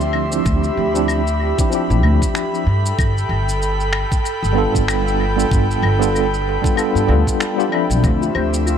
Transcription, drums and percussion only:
0.00 shaker
0.13 claves
0.32 shaker
0.46 kick, shaker
0.64 shaker
0.95 shaker
1.08 claves, shaker
1.27 shaker
1.59 kick, shaker
1.72 shaker
1.91 shaker
2.03 claves
2.22 kick, shaker
2.35 finger snap, shaker
2.54 shaker
2.86 shaker
2.99 kick, claves, shaker
3.18 shaker
3.49 shaker
3.62 shaker
3.80 shaker
3.93 finger snap, claves
4.12 kick, shaker
4.26 shaker
4.44 shaker
4.75 kick, shaker
4.88 finger snap, claves, shaker
5.08 shaker
5.39 shaker
5.51 kick, shaker
5.71 shaker
5.83 claves
6.02 shaker
6.16 shaker
6.34 shaker
6.64 kick, shaker
6.77 claves, shaker
6.96 shaker
7.27 kick, shaker
7.40 finger snap, shaker
7.60 shaker
7.72 claves
7.91 shaker
8.04 kick, shaker
8.22 shaker
8.35 claves
8.54 shaker
8.67 shaker

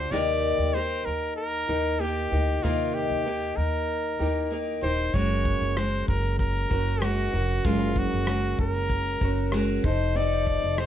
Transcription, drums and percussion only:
5.14 kick, shaker
5.29 shaker
5.45 kick
5.62 shaker
5.77 cross-stick, shaker
5.93 shaker
6.08 kick
6.24 shaker
6.39 kick, shaker
6.56 shaker
6.71 kick, shaker
6.87 shaker
7.02 cross-stick, shaker
7.18 shaker
7.49 shaker
7.64 kick, shaker
7.79 shaker
7.95 kick, shaker
8.12 shaker
8.27 cross-stick, shaker
8.43 shaker
8.59 kick
8.74 shaker
8.90 kick, shaker
9.06 shaker
9.21 kick, shaker
9.37 shaker
9.52 cross-stick, shaker
9.68 shaker
9.84 kick, cross-stick
10.00 shaker
10.16 shaker
10.31 shaker
10.47 kick
10.63 shaker
10.78 cross-stick, shaker

